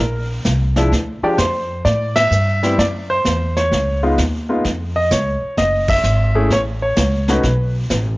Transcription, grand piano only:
0.00 0.26 A#4 medium
0.76 0.90 F3 medium
0.76 0.91 G#3 medium
0.76 0.91 D4 medium
0.76 0.91 E4 medium
1.23 1.37 F3 medium
1.23 1.37 G#3 medium
1.23 1.37 D4 medium
1.23 1.37 G4 medium
1.23 1.29 D5 medium
1.38 1.82 C5 medium
1.85 2.17 D5 medium
2.16 2.80 E5 loud
2.63 2.77 G3 medium
2.63 2.77 B3 medium
2.63 2.77 C4 medium
2.63 2.77 E4 medium
2.79 2.86 D5 loud
3.10 3.58 C5 loud
3.57 4.00 C#5 medium
4.03 4.17 G#3 medium
4.03 4.17 B3 medium
4.03 4.17 D#4 medium
4.03 4.17 F4 medium
4.49 4.63 G#3 medium
4.49 4.63 B3 medium
4.49 4.63 D#4 medium
4.49 4.64 F4 medium
4.96 5.10 D#5 medium
5.12 5.55 C#5 medium
5.58 5.90 D#5 medium
5.89 6.53 E5 loud
6.35 6.49 A3 medium
6.35 6.49 C#4 medium
6.35 6.50 E4 medium
6.35 6.50 G#4 medium
6.53 6.59 C#5 loud
6.82 7.30 C#5 medium
7.29 7.43 A3 medium
7.29 7.43 C#4 medium
7.29 7.43 D#4 medium
7.29 7.43 F#4 medium
7.29 7.73 B4 medium

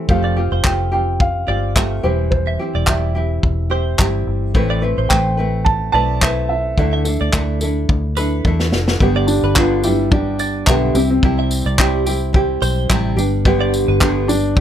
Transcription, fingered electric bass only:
0.09 0.49 F1 medium
0.52 0.63 F1 medium
0.64 1.44 F1 medium
1.48 2.00 G1 medium
2.04 2.56 E1 medium
2.75 2.86 E1 loud
3.43 3.95 E1 medium
3.99 4.25 G1 medium
4.27 4.53 G1 medium
4.55 4.95 A1 medium
4.98 5.09 A1 medium
5.10 5.90 A1 loud
5.94 6.74 B1 medium
6.78 7.17 D2 loud
7.21 7.33 D2 loud
7.33 7.85 D2 loud
7.89 8.41 D2 loud
8.45 8.70 E2 medium
8.72 8.98 F1 medium
9.00 9.40 G1 medium
9.43 10.63 G1 loud
10.67 10.93 B1 medium
10.95 11.21 C2 loud
11.23 11.63 C2 loud
11.66 12.58 C2 loud
12.62 12.88 B1 medium
12.90 13.16 A1 medium
13.17 13.84 G1 loud
13.88 14.60 G1 loud

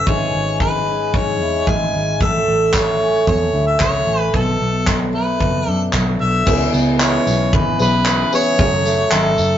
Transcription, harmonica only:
0.08 0.60 C#5 medium
0.60 1.17 B4 medium
1.16 1.70 C#5 medium
1.68 2.21 G#5 medium
2.22 2.77 E5 medium
2.76 3.28 C#5 medium
3.28 3.65 C#5 medium
3.67 3.80 E5 medium
3.81 4.20 C#5 medium
4.20 4.37 B4 medium
4.36 4.98 A4 medium
5.15 5.70 B4 medium
5.70 5.90 A4 medium
6.21 6.70 E5 loud
7.02 7.56 C#5 medium
7.55 7.80 B4 medium
7.82 8.30 B4 loud
8.35 9.14 C#5 loud
9.12 9.58 A4 medium

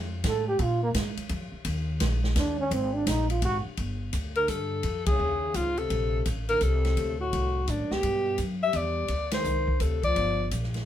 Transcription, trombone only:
0.28 0.47 A4 loud
0.48 0.64 G4 loud
0.63 0.82 F4 loud
0.83 0.90 A#3 loud
2.38 2.58 D4 loud
2.60 2.74 C#4 loud
2.73 2.95 C4 loud
2.94 3.10 D4 loud
3.08 3.30 D#4 loud
3.31 3.42 F4 medium
3.45 3.58 F#4 loud
4.36 4.50 D3 medium
4.50 4.85 D3 medium
5.07 5.57 C#3 medium
5.55 5.79 G#2 medium
5.77 6.25 C3 medium
6.48 6.64 D3 medium
6.63 7.19 C3 medium
7.19 7.71 A2 medium
7.69 7.94 F#2 medium
7.92 8.39 B2 medium
8.64 8.76 G3 medium
8.76 9.11 G3 medium
9.34 9.83 D#3 medium
9.81 10.03 C3 medium
10.04 10.48 F3 medium

